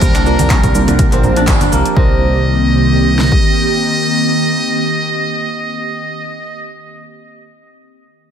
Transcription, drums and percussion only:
0.01 kick, closed hi-hat, high conga, low conga, cabasa
0.15 finger snap, clap, closed hi-hat, muted conga, cabasa
0.26 cabasa
0.39 closed hi-hat, muted conga, high conga, cabasa
0.50 finger snap, kick, clap, closed hi-hat, mid tom, cabasa
0.63 kick, closed hi-hat, muted conga, low conga, cabasa
0.75 cabasa
0.88 closed hi-hat, muted conga, high conga, cabasa
0.99 kick, closed hi-hat, cabasa
1.12 clap, closed hi-hat, cabasa
1.23 muted conga, low conga, cabasa
1.36 closed hi-hat, mid tom, cabasa
1.47 finger snap, kick, clap, closed hi-hat, muted conga, high conga, cabasa
1.61 closed hi-hat, high conga, cabasa
1.72 muted conga, cabasa
1.86 closed hi-hat, cabasa
1.97 kick
3.19 snare
3.32 kick

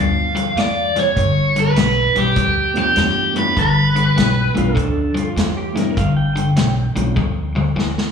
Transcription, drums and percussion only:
0.36 closed hi-hat
0.57 snare, closed hi-hat
0.96 snare, closed hi-hat
1.17 kick, closed hi-hat
1.56 closed hi-hat
1.76 snare, closed hi-hat
2.15 closed hi-hat
2.36 kick, closed hi-hat
2.75 closed hi-hat
2.96 snare, closed hi-hat
3.36 closed hi-hat
3.57 kick, closed hi-hat
3.96 closed hi-hat
4.17 snare, closed hi-hat
4.57 closed hi-hat
4.77 kick, closed hi-hat
5.17 closed hi-hat
5.37 snare, closed hi-hat
5.77 snare, closed hi-hat
5.97 kick, closed hi-hat
6.37 closed hi-hat
6.56 snare, closed hi-hat
6.96 closed hi-hat
7.16 kick, high tom
7.57 mid tom
7.79 snare
7.98 snare

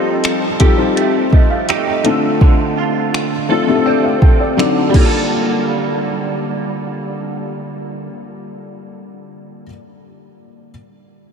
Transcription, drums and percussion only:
0.24 finger snap, closed hi-hat
0.60 kick, closed hi-hat
0.97 closed hi-hat
1.33 kick
1.69 finger snap, closed hi-hat
2.05 closed hi-hat
2.41 kick
3.14 finger snap
4.22 kick
4.59 finger snap
4.94 kick, crash

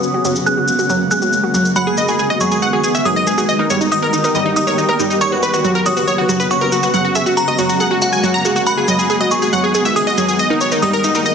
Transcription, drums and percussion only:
0.03 shaker
0.25 shaker
0.36 shaker
0.47 shaker
0.68 shaker
0.79 shaker
0.90 shaker
1.11 shaker
1.22 shaker
1.33 shaker
1.54 shaker
1.65 shaker
1.76 shaker
1.98 shaker
2.08 shaker
2.19 shaker
2.41 shaker
2.51 shaker
2.62 shaker
2.84 shaker
2.95 shaker
3.05 shaker
3.27 shaker
3.38 shaker
3.49 shaker
3.70 shaker
3.81 shaker
3.92 shaker
4.13 shaker
4.24 shaker
4.35 shaker
4.57 shaker
4.67 shaker
4.78 shaker
5.00 shaker
5.11 shaker
5.21 shaker
5.43 shaker
5.54 shaker
5.65 shaker
5.86 shaker
5.97 shaker
6.08 shaker
6.29 shaker
6.40 shaker
6.51 shaker
6.72 shaker
6.83 shaker
6.94 shaker
7.15 shaker
7.26 shaker
7.37 shaker
7.59 shaker
7.69 shaker
7.80 shaker
8.02 shaker
8.13 shaker
8.24 shaker
8.45 shaker
8.56 shaker
8.67 shaker
8.88 shaker
8.99 shaker
9.10 shaker
9.31 shaker
9.42 shaker
9.53 shaker
9.75 shaker
9.85 shaker
9.96 shaker
10.18 shaker
10.29 shaker
10.39 shaker
10.61 shaker
10.72 shaker
10.82 shaker
11.04 shaker
11.15 shaker
11.26 shaker

